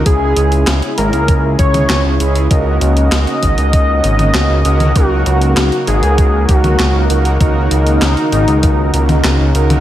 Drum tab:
HH |x-xxxxxxx-xxx-xx|x-xxxxxxx-xxx-xx|x-xxxxxxx-xxx-xx|x-xxxxxxx-xxx-xx|
CP |----x-------x---|----x-------x---|----x-------x---|----x-------x---|
SD |----o-------o---|----o-------o---|----o-------o---|----o-------o---|
T2 |-----------o----|-----------o---o|-----------o----|-----------o---o|
BD |o-------o-o-----|o-----o-o-------|o-------o-o-----|o-------o-------|